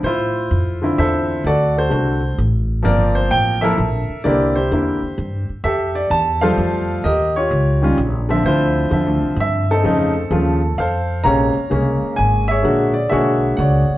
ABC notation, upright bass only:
X:1
M:3/4
L:1/8
Q:"Swing" 1/4=129
K:Dm
V:1 name="Upright bass" clef=bass
A,,2 F,,2 E,,2 | D,,2 C,,2 A,,,2 | G,,,2 A,,,2 B,,, z | C,,2 E,, z G,, z |
F,,2 E,,2 F,,2 | _E,,2 _D,,2 B,,,2 | D,,2 (3E,, D,, C,, G,,2 | F,,2 _E,,2 F,,2 |
[K:Bbm] B,,, z C,, z A,,,2 | B,,,2 _C,,2 ^C,, z |]